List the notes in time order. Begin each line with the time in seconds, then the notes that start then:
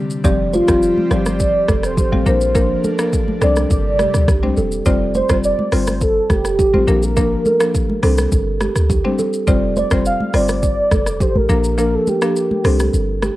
Already playing: C3 G3 D4
0.10 shaker
0.24 F1 F3 G3 C4 G4 D5, kick, shaker
0.53 F4 C5, high conga, shaker
0.68 F1 F3 G3 C4 G4, kick, cross-stick, shaker
0.82 shaker
0.98 high conga
1.11 G1 F3 G3 C4 G4 C5 D5, cross-stick, low conga, shaker
1.26 cross-stick, high conga, shaker
1.40 kick, shaker
1.68 F1 A4, kick, cross-stick, high conga, shaker
1.83 C5, cross-stick, shaker
1.97 G4, kick, low conga, shaker
2.12 A1 F3 G3 C4 G4, high conga
2.26 A#1 F3 A#3 D4 A#4 C5, low conga, shaker
2.41 shaker
2.55 F3 A#3 D4 A#4, kick, shaker
2.84 A4, high conga, shaker
2.99 F3 A#3 D4 A#4, cross-stick, shaker
3.13 kick, shaker
3.28 high conga
3.41 C2 C3 G3 C4 D4 A4 C5 D5, cross-stick, low conga, shaker
3.56 cross-stick, high conga, shaker
3.70 G1 D5, kick, shaker
3.99 G4, cross-stick, high conga, shaker
4.14 D2, cross-stick, shaker
4.28 C2 G4, kick, cross-stick, low conga, shaker
4.43 G3 C4 D4 C5, high conga
4.57 E1 A4, low conga, shaker
4.72 shaker
4.86 F1 G3 C4 F4 C5 D5, kick, shaker
5.15 C5, high conga, shaker
5.29 F1 G3 C4 F4 C5, kick, cross-stick, shaker
5.44 D5, shaker
5.59 high conga
5.72 G1 G3 C4 F4 C5, cross-stick, open hi-hat, shaker
5.87 cross-stick, high conga, shaker
6.01 A4, kick, shaker
6.30 F1 G4 A4, kick, cross-stick, high conga, shaker
6.45 cross-stick, shaker
6.59 G4, kick, low conga, shaker
6.74 A1 G3 C4 F4 C5, high conga
6.87 A#1 F3 A#3 D4 A#4, low conga, shaker
7.03 A#4, shaker
7.16 F3 A#3 D4 A#4, kick, shaker
7.46 A4, high conga, shaker
7.60 F3 A#3 D4 A#4, cross-stick, shaker
7.75 kick, shaker
7.90 high conga
8.03 C2 G3 C4 D4 A4 C5, cross-stick, open hi-hat, shaker
8.18 cross-stick, high conga, shaker
8.32 G1, kick, shaker
8.61 G4, cross-stick, high conga, shaker
8.76 D2, cross-stick, shaker
8.90 G4, kick, low conga, shaker
9.04 G3 C4 D4 C5, high conga
9.19 A4, low conga, shaker
9.33 shaker
9.47 F1 G3 C4 F4 C5 D5, kick, shaker
9.76 C5 D5, high conga, shaker
9.91 F1 G3 C4 F4 C5, kick, cross-stick, shaker
10.05 F5, shaker
10.20 high conga
10.34 G1 G3 C4 F4 C5 D5, cross-stick, open hi-hat, shaker
10.48 cross-stick, high conga, shaker
10.63 kick, shaker
10.91 F1 A4, kick, cross-stick, high conga, shaker
11.06 cross-stick, shaker
11.20 G4 C5, kick, low conga, shaker
11.36 A1 A#4, high conga
11.49 A#1 F3 A#3 D4 A#4, low conga, shaker
11.64 shaker
11.78 F3 A#3 D4 A#4, shaker
11.95 A4
12.07 G4 A4, high conga, shaker
12.22 F3 A#3 D4 A#4, cross-stick, shaker
12.36 shaker
12.51 high conga
12.64 C2 G3 C4 D4 A4 C5, cross-stick, open hi-hat, shaker
12.79 cross-stick, high conga, shaker
12.94 G1, shaker
13.22 G4, cross-stick, high conga, shaker